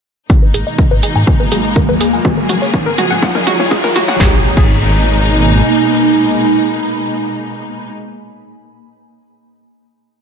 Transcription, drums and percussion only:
0, 0, Header, 1, 2, 480
1, 0, Start_track
1, 0, Key_signature, 5, "minor"
1, 0, Tempo, 487805
1, 294, Time_signature, 4, 2, 24, 8
1, 10053, End_track
2, 0, Start_track
2, 0, Title_t, "Drums"
2, 293, Note_on_c, 9, 36, 113
2, 294, Note_on_c, 9, 47, 46
2, 295, Note_on_c, 9, 82, 34
2, 391, Note_off_c, 9, 36, 0
2, 393, Note_off_c, 9, 47, 0
2, 394, Note_off_c, 9, 82, 0
2, 533, Note_on_c, 9, 82, 84
2, 534, Note_on_c, 9, 46, 99
2, 631, Note_off_c, 9, 82, 0
2, 633, Note_off_c, 9, 46, 0
2, 661, Note_on_c, 9, 82, 50
2, 760, Note_off_c, 9, 82, 0
2, 773, Note_on_c, 9, 36, 110
2, 774, Note_on_c, 9, 47, 47
2, 778, Note_on_c, 9, 82, 36
2, 871, Note_off_c, 9, 36, 0
2, 872, Note_off_c, 9, 47, 0
2, 877, Note_off_c, 9, 82, 0
2, 1008, Note_on_c, 9, 82, 86
2, 1014, Note_on_c, 9, 46, 92
2, 1106, Note_off_c, 9, 82, 0
2, 1112, Note_off_c, 9, 46, 0
2, 1141, Note_on_c, 9, 82, 46
2, 1239, Note_off_c, 9, 82, 0
2, 1252, Note_on_c, 9, 36, 108
2, 1254, Note_on_c, 9, 47, 57
2, 1256, Note_on_c, 9, 82, 36
2, 1351, Note_off_c, 9, 36, 0
2, 1352, Note_off_c, 9, 47, 0
2, 1355, Note_off_c, 9, 82, 0
2, 1491, Note_on_c, 9, 82, 92
2, 1493, Note_on_c, 9, 46, 105
2, 1590, Note_off_c, 9, 82, 0
2, 1592, Note_off_c, 9, 46, 0
2, 1609, Note_on_c, 9, 82, 50
2, 1708, Note_off_c, 9, 82, 0
2, 1725, Note_on_c, 9, 82, 34
2, 1732, Note_on_c, 9, 36, 116
2, 1733, Note_on_c, 9, 47, 61
2, 1824, Note_off_c, 9, 82, 0
2, 1831, Note_off_c, 9, 36, 0
2, 1832, Note_off_c, 9, 47, 0
2, 1974, Note_on_c, 9, 46, 98
2, 1979, Note_on_c, 9, 82, 85
2, 2072, Note_off_c, 9, 46, 0
2, 2077, Note_off_c, 9, 82, 0
2, 2096, Note_on_c, 9, 82, 46
2, 2194, Note_off_c, 9, 82, 0
2, 2212, Note_on_c, 9, 82, 35
2, 2213, Note_on_c, 9, 36, 120
2, 2214, Note_on_c, 9, 47, 73
2, 2311, Note_off_c, 9, 36, 0
2, 2311, Note_off_c, 9, 82, 0
2, 2312, Note_off_c, 9, 47, 0
2, 2450, Note_on_c, 9, 82, 84
2, 2454, Note_on_c, 9, 46, 104
2, 2454, Note_on_c, 9, 47, 75
2, 2549, Note_off_c, 9, 82, 0
2, 2553, Note_off_c, 9, 46, 0
2, 2553, Note_off_c, 9, 47, 0
2, 2581, Note_on_c, 9, 82, 55
2, 2679, Note_off_c, 9, 82, 0
2, 2693, Note_on_c, 9, 36, 126
2, 2695, Note_on_c, 9, 47, 80
2, 2697, Note_on_c, 9, 82, 44
2, 2791, Note_off_c, 9, 36, 0
2, 2793, Note_off_c, 9, 47, 0
2, 2795, Note_off_c, 9, 82, 0
2, 2930, Note_on_c, 9, 82, 85
2, 2934, Note_on_c, 9, 46, 104
2, 2934, Note_on_c, 9, 47, 80
2, 3028, Note_off_c, 9, 82, 0
2, 3033, Note_off_c, 9, 46, 0
2, 3033, Note_off_c, 9, 47, 0
2, 3060, Note_on_c, 9, 82, 59
2, 3158, Note_off_c, 9, 82, 0
2, 3173, Note_on_c, 9, 36, 122
2, 3174, Note_on_c, 9, 47, 90
2, 3181, Note_on_c, 9, 82, 41
2, 3272, Note_off_c, 9, 36, 0
2, 3272, Note_off_c, 9, 47, 0
2, 3279, Note_off_c, 9, 82, 0
2, 3298, Note_on_c, 9, 47, 82
2, 3396, Note_off_c, 9, 47, 0
2, 3412, Note_on_c, 9, 82, 93
2, 3414, Note_on_c, 9, 46, 111
2, 3414, Note_on_c, 9, 47, 99
2, 3511, Note_off_c, 9, 82, 0
2, 3512, Note_off_c, 9, 46, 0
2, 3512, Note_off_c, 9, 47, 0
2, 3534, Note_on_c, 9, 82, 53
2, 3538, Note_on_c, 9, 47, 81
2, 3632, Note_off_c, 9, 82, 0
2, 3637, Note_off_c, 9, 47, 0
2, 3653, Note_on_c, 9, 36, 123
2, 3654, Note_on_c, 9, 47, 101
2, 3654, Note_on_c, 9, 82, 38
2, 3752, Note_off_c, 9, 36, 0
2, 3752, Note_off_c, 9, 82, 0
2, 3753, Note_off_c, 9, 47, 0
2, 3778, Note_on_c, 9, 47, 87
2, 3876, Note_off_c, 9, 47, 0
2, 3893, Note_on_c, 9, 82, 96
2, 3894, Note_on_c, 9, 46, 108
2, 3894, Note_on_c, 9, 47, 107
2, 3991, Note_off_c, 9, 82, 0
2, 3992, Note_off_c, 9, 46, 0
2, 3992, Note_off_c, 9, 47, 0
2, 4016, Note_on_c, 9, 82, 56
2, 4017, Note_on_c, 9, 47, 100
2, 4114, Note_off_c, 9, 82, 0
2, 4116, Note_off_c, 9, 47, 0
2, 4134, Note_on_c, 9, 36, 115
2, 4135, Note_on_c, 9, 38, 92
2, 4232, Note_off_c, 9, 36, 0
2, 4233, Note_off_c, 9, 38, 0
2, 4497, Note_on_c, 9, 36, 114
2, 4498, Note_on_c, 9, 49, 82
2, 4596, Note_off_c, 9, 36, 0
2, 4596, Note_off_c, 9, 49, 0
2, 10053, End_track
0, 0, End_of_file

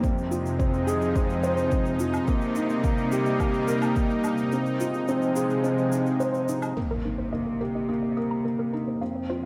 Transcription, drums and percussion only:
0, 0, Header, 1, 2, 480
1, 0, Start_track
1, 0, Key_signature, -3, "minor"
1, 0, Tempo, 560748
1, 32, Time_signature, 4, 2, 24, 8
1, 8093, End_track
2, 0, Start_track
2, 0, Title_t, "Drums"
2, 31, Note_on_c, 9, 36, 95
2, 32, Note_on_c, 9, 82, 35
2, 117, Note_off_c, 9, 36, 0
2, 118, Note_off_c, 9, 82, 0
2, 155, Note_on_c, 9, 82, 19
2, 240, Note_off_c, 9, 82, 0
2, 272, Note_on_c, 9, 82, 68
2, 357, Note_off_c, 9, 82, 0
2, 392, Note_on_c, 9, 82, 27
2, 478, Note_off_c, 9, 82, 0
2, 511, Note_on_c, 9, 36, 95
2, 513, Note_on_c, 9, 82, 36
2, 596, Note_off_c, 9, 36, 0
2, 599, Note_off_c, 9, 82, 0
2, 632, Note_on_c, 9, 82, 18
2, 717, Note_off_c, 9, 82, 0
2, 752, Note_on_c, 9, 82, 64
2, 838, Note_off_c, 9, 82, 0
2, 870, Note_on_c, 9, 82, 26
2, 956, Note_off_c, 9, 82, 0
2, 990, Note_on_c, 9, 36, 91
2, 990, Note_on_c, 9, 82, 38
2, 1076, Note_off_c, 9, 36, 0
2, 1076, Note_off_c, 9, 82, 0
2, 1111, Note_on_c, 9, 82, 20
2, 1197, Note_off_c, 9, 82, 0
2, 1228, Note_on_c, 9, 82, 63
2, 1314, Note_off_c, 9, 82, 0
2, 1347, Note_on_c, 9, 82, 30
2, 1432, Note_off_c, 9, 82, 0
2, 1468, Note_on_c, 9, 82, 39
2, 1470, Note_on_c, 9, 36, 88
2, 1554, Note_off_c, 9, 82, 0
2, 1556, Note_off_c, 9, 36, 0
2, 1587, Note_on_c, 9, 82, 19
2, 1673, Note_off_c, 9, 82, 0
2, 1707, Note_on_c, 9, 82, 68
2, 1793, Note_off_c, 9, 82, 0
2, 1829, Note_on_c, 9, 77, 57
2, 1829, Note_on_c, 9, 82, 30
2, 1915, Note_off_c, 9, 77, 0
2, 1915, Note_off_c, 9, 82, 0
2, 1946, Note_on_c, 9, 82, 38
2, 1951, Note_on_c, 9, 36, 86
2, 2032, Note_off_c, 9, 82, 0
2, 2036, Note_off_c, 9, 36, 0
2, 2067, Note_on_c, 9, 82, 18
2, 2152, Note_off_c, 9, 82, 0
2, 2186, Note_on_c, 9, 82, 64
2, 2272, Note_off_c, 9, 82, 0
2, 2308, Note_on_c, 9, 82, 28
2, 2393, Note_off_c, 9, 82, 0
2, 2429, Note_on_c, 9, 82, 35
2, 2431, Note_on_c, 9, 36, 95
2, 2515, Note_off_c, 9, 82, 0
2, 2517, Note_off_c, 9, 36, 0
2, 2549, Note_on_c, 9, 82, 18
2, 2635, Note_off_c, 9, 82, 0
2, 2668, Note_on_c, 9, 82, 63
2, 2754, Note_off_c, 9, 82, 0
2, 2790, Note_on_c, 9, 82, 27
2, 2875, Note_off_c, 9, 82, 0
2, 2910, Note_on_c, 9, 77, 56
2, 2910, Note_on_c, 9, 82, 36
2, 2911, Note_on_c, 9, 36, 90
2, 2996, Note_off_c, 9, 36, 0
2, 2996, Note_off_c, 9, 77, 0
2, 2996, Note_off_c, 9, 82, 0
2, 3029, Note_on_c, 9, 82, 21
2, 3115, Note_off_c, 9, 82, 0
2, 3149, Note_on_c, 9, 82, 66
2, 3234, Note_off_c, 9, 82, 0
2, 3269, Note_on_c, 9, 77, 64
2, 3269, Note_on_c, 9, 82, 28
2, 3354, Note_off_c, 9, 77, 0
2, 3354, Note_off_c, 9, 82, 0
2, 3390, Note_on_c, 9, 82, 37
2, 3391, Note_on_c, 9, 36, 92
2, 3475, Note_off_c, 9, 82, 0
2, 3477, Note_off_c, 9, 36, 0
2, 3510, Note_on_c, 9, 82, 19
2, 3596, Note_off_c, 9, 82, 0
2, 3628, Note_on_c, 9, 77, 53
2, 3628, Note_on_c, 9, 82, 65
2, 3714, Note_off_c, 9, 77, 0
2, 3714, Note_off_c, 9, 82, 0
2, 3747, Note_on_c, 9, 82, 28
2, 3833, Note_off_c, 9, 82, 0
2, 3869, Note_on_c, 9, 82, 35
2, 3954, Note_off_c, 9, 82, 0
2, 3990, Note_on_c, 9, 82, 19
2, 4075, Note_off_c, 9, 82, 0
2, 4111, Note_on_c, 9, 82, 67
2, 4196, Note_off_c, 9, 82, 0
2, 4228, Note_on_c, 9, 82, 29
2, 4313, Note_off_c, 9, 82, 0
2, 4348, Note_on_c, 9, 82, 38
2, 4434, Note_off_c, 9, 82, 0
2, 4468, Note_on_c, 9, 82, 20
2, 4554, Note_off_c, 9, 82, 0
2, 4587, Note_on_c, 9, 82, 67
2, 4672, Note_off_c, 9, 82, 0
2, 4708, Note_on_c, 9, 82, 28
2, 4793, Note_off_c, 9, 82, 0
2, 4829, Note_on_c, 9, 82, 39
2, 4915, Note_off_c, 9, 82, 0
2, 4948, Note_on_c, 9, 82, 21
2, 5034, Note_off_c, 9, 82, 0
2, 5068, Note_on_c, 9, 82, 67
2, 5154, Note_off_c, 9, 82, 0
2, 5190, Note_on_c, 9, 82, 30
2, 5275, Note_off_c, 9, 82, 0
2, 5310, Note_on_c, 9, 82, 38
2, 5396, Note_off_c, 9, 82, 0
2, 5430, Note_on_c, 9, 82, 19
2, 5515, Note_off_c, 9, 82, 0
2, 5550, Note_on_c, 9, 82, 63
2, 5635, Note_off_c, 9, 82, 0
2, 5669, Note_on_c, 9, 77, 64
2, 5669, Note_on_c, 9, 82, 28
2, 5755, Note_off_c, 9, 77, 0
2, 5755, Note_off_c, 9, 82, 0
2, 8093, End_track
0, 0, End_of_file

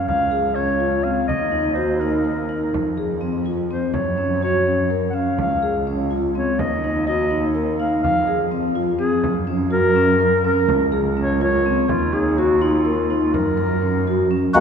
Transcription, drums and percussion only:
0, 0, Header, 1, 2, 480
1, 0, Start_track
1, 0, Tempo, 481928
1, 1282, Time_signature, 11, 3, 24, 8
1, 14544, End_track
2, 0, Start_track
2, 0, Title_t, "Frame drum"
2, 84, Note_on_c, 9, 64, 52
2, 183, Note_off_c, 9, 64, 0
2, 324, Note_on_c, 9, 64, 17
2, 423, Note_off_c, 9, 64, 0
2, 1285, Note_on_c, 9, 64, 60
2, 1385, Note_off_c, 9, 64, 0
2, 2253, Note_on_c, 9, 64, 18
2, 2352, Note_off_c, 9, 64, 0
2, 2731, Note_on_c, 9, 64, 56
2, 2830, Note_off_c, 9, 64, 0
2, 2972, Note_on_c, 9, 64, 19
2, 3071, Note_off_c, 9, 64, 0
2, 3920, Note_on_c, 9, 64, 59
2, 4020, Note_off_c, 9, 64, 0
2, 4644, Note_on_c, 9, 64, 17
2, 4744, Note_off_c, 9, 64, 0
2, 5362, Note_on_c, 9, 64, 58
2, 5461, Note_off_c, 9, 64, 0
2, 6565, Note_on_c, 9, 64, 64
2, 6665, Note_off_c, 9, 64, 0
2, 7288, Note_on_c, 9, 64, 18
2, 7387, Note_off_c, 9, 64, 0
2, 8011, Note_on_c, 9, 64, 59
2, 8111, Note_off_c, 9, 64, 0
2, 8244, Note_on_c, 9, 64, 18
2, 8344, Note_off_c, 9, 64, 0
2, 9199, Note_on_c, 9, 64, 59
2, 9299, Note_off_c, 9, 64, 0
2, 9923, Note_on_c, 9, 64, 18
2, 10023, Note_off_c, 9, 64, 0
2, 10643, Note_on_c, 9, 64, 61
2, 10743, Note_off_c, 9, 64, 0
2, 10887, Note_on_c, 9, 64, 19
2, 10986, Note_off_c, 9, 64, 0
2, 11844, Note_on_c, 9, 64, 64
2, 11944, Note_off_c, 9, 64, 0
2, 12802, Note_on_c, 9, 64, 19
2, 12902, Note_off_c, 9, 64, 0
2, 13045, Note_on_c, 9, 64, 19
2, 13144, Note_off_c, 9, 64, 0
2, 13287, Note_on_c, 9, 64, 60
2, 13386, Note_off_c, 9, 64, 0
2, 14490, Note_on_c, 9, 64, 54
2, 14544, Note_off_c, 9, 64, 0
2, 14544, End_track
0, 0, End_of_file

